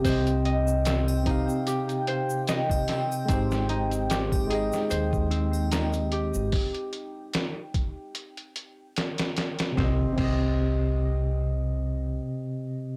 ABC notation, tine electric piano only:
X:1
M:4/4
L:1/8
Q:"Swing 16ths" 1/4=74
K:Cm
V:1 name="Tine electric piano"
[C,CGe]3 [C,CGf]4- [C,CGf] | [A,EGc]3 [A,Eeg]4- [A,Eeg] | z8 | [C,CGe] [C,CGe]6- [C,CGe] |]